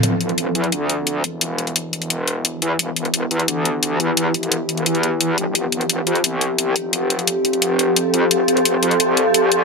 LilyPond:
<<
  \new Staff \with { instrumentName = "Synth drone" } { \time 4/4 \key e \phrygian \tempo 4 = 174 <e b e' g'>1~ | <e b e' g'>1~ | <e b e' g'>1~ | <e b e' g'>1 |
<f c' a'>1~ | <f c' a'>1~ | <f c' a'>1 | }
  \new Staff \with { instrumentName = "Wobble bass" } { \clef bass \time 4/4 \key e \phrygian e,,4. e,8 d,4. e,,8~ | e,,2.~ e,,8 e,8 | e,,4. e,8 d,4. e,8~ | e,8 e,,4. e,4. g,,8 |
f,,4. f,8 c,4. f,,8~ | f,,2.~ f,,8 f,8 | f,,4. f,8 c,4. c,8 | }
  \new DrumStaff \with { instrumentName = "Drums" } \drummode { \time 4/4 hh8 hh16 hh16 hh8 hh16 hh16 hh8 hh8 hh8 hh8 | hh8 hh16 hh16 hh8 hh16 hh16 hh8 hh8 hh8 hh8 | hh8 hh16 hh16 hh8 hh16 hh16 hh8 hh8 hh8 hh8 | hh8 hh16 hh16 hh8 hh16 hh16 hh16 hh16 hh8 hh8 hh8 |
hh8 hh16 hh16 hh8 hh16 hh16 hh8 hh8 hh8 hh8 | hh8 hh16 hh16 hh8 hh16 hh16 hh8 hh8 hh8 hh8 | hh8 hh16 hh16 hh8 hh16 hh16 hh8 hh8 hh8 hh8 | }
>>